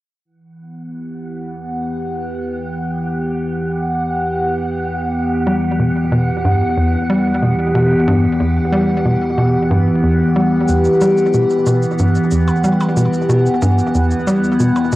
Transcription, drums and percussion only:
10.68 shaker
10.85 shaker
11.01 shaker
11.17 shaker
11.34 shaker
11.50 shaker
11.66 shaker
11.83 shaker
11.99 shaker
12.15 shaker
12.31 shaker
12.48 percussion blips, shaker
12.64 shaker
12.81 percussion blips, shaker
12.97 shaker
13.13 shaker
13.30 shaker
13.46 shaker
13.62 shaker
13.79 shaker
13.95 shaker
14.11 shaker
14.27 shaker
14.44 shaker
14.60 shaker
14.76 percussion blips, shaker
14.92 shaker

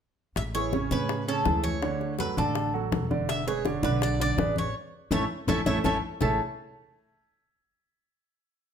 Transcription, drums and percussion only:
0.36 high bongo, high conga
0.55 high conga
0.73 high bongo, high conga
0.91 high conga
1.09 high bongo, high conga
1.28 high conga
1.46 high bongo, low bongo, high conga
1.65 high conga
1.83 high bongo, high conga
2.01 high bongo, high conga
2.19 high bongo, high conga
2.37 high bongo, high conga
2.55 high bongo, high conga
2.76 high conga
2.92 high bongo, low bongo, high conga
3.11 high bongo, high conga
3.29 high bongo, high conga
3.47 high conga
3.65 high bongo, high conga
3.83 high conga
4.02 high bongo, high conga
4.20 high conga
4.38 high bongo, low bongo, high conga
4.56 high conga
5.11 low bongo, high conga
5.48 low bongo, high conga
5.66 low bongo, high conga
5.84 low bongo, high conga
6.21 low bongo, low conga

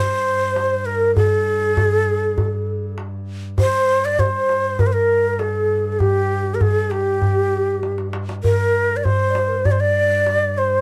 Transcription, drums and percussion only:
0.11 darbuka ka
0.56 darbuka tek
1.01 darbuka ka
1.17 darbuka dum
1.62 darbuka ka
1.77 darbuka dum
2.38 darbuka dum
2.53 darbuka ka
2.98 darbuka tek
3.43 darbuka ka
3.58 darbuka dum
4.04 darbuka ka
4.19 darbuka dum
4.49 darbuka tek
4.79 darbuka dum
5.39 darbuka tek
5.85 darbuka ka
6.00 darbuka dum
6.15 darbuka ka
6.46 darbuka ka
6.61 darbuka dum
6.91 darbuka tek
7.22 darbuka dum
7.68 darbuka ka
7.83 darbuka tek
7.98 darbuka ka
8.13 darbuka tek
8.29 darbuka ka
8.44 darbuka dum
8.90 darbuka ka
9.05 darbuka dum
9.35 darbuka tek
9.65 darbuka dum
9.81 darbuka ka
10.26 darbuka tek
10.73 darbuka ka

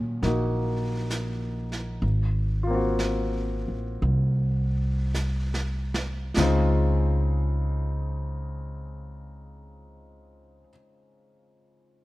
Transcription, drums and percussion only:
0.23 brush sweep, snare
1.10 snare, hi-hat pedal
1.72 snare
2.03 brush sweep
2.99 snare, hi-hat pedal
4.02 brush sweep
5.14 snare, hi-hat pedal
5.54 snare
5.94 snare
6.37 snare, splash

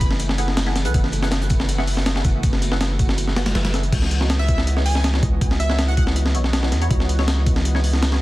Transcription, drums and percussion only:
0.01 kick, closed hi-hat, shaker
0.11 snare
0.20 closed hi-hat, shaker
0.29 snare
0.38 closed hi-hat, shaker
0.48 snare
0.57 snare, closed hi-hat, shaker
0.66 snare
0.76 snare, closed hi-hat, shaker
0.85 closed hi-hat
0.94 kick, closed hi-hat, shaker
1.04 snare
1.12 closed hi-hat, shaker
1.22 snare, closed hi-hat
1.31 snare, closed hi-hat, shaker
1.42 closed hi-hat
1.50 kick, closed hi-hat, shaker
1.60 snare
1.69 closed hi-hat, shaker
1.78 snare
1.87 open hi-hat, shaker
1.97 snare
2.06 snare, closed hi-hat, shaker
2.16 snare
2.24 kick, closed hi-hat, shaker
2.43 kick, closed hi-hat, shaker
2.53 snare
2.62 closed hi-hat, shaker
2.72 snare
2.81 snare, closed hi-hat, shaker
2.99 kick, closed hi-hat, shaker
3.09 snare
3.18 closed hi-hat, shaker
3.27 snare
3.36 snare, closed hi-hat, shaker
3.46 snare, closed hi-hat
3.55 snare, closed hi-hat, shaker
3.65 snare, closed hi-hat
3.74 snare, closed hi-hat, shaker
3.83 closed hi-hat
3.93 kick, closed hi-hat, crash
4.02 snare
4.11 closed hi-hat
4.21 snare
4.30 snare, closed hi-hat
4.48 kick, closed hi-hat
4.58 snare
4.67 closed hi-hat
4.77 snare
4.86 open hi-hat
4.95 snare
5.04 snare, closed hi-hat
5.14 snare
5.23 kick, closed hi-hat
5.41 kick, closed hi-hat
5.51 snare
5.60 closed hi-hat
5.70 snare
5.79 snare, closed hi-hat
5.97 kick, closed hi-hat
6.07 snare
6.16 closed hi-hat
6.26 snare
6.35 closed hi-hat
6.44 snare
6.53 snare, closed hi-hat
6.63 snare
6.72 snare, closed hi-hat
6.82 closed hi-hat
6.91 kick, closed hi-hat
7.00 snare
7.09 closed hi-hat
7.19 snare
7.28 snare, closed hi-hat
7.47 kick, closed hi-hat
7.56 snare
7.65 closed hi-hat
7.75 snare
7.84 open hi-hat
7.93 snare
8.02 snare, closed hi-hat
8.12 snare

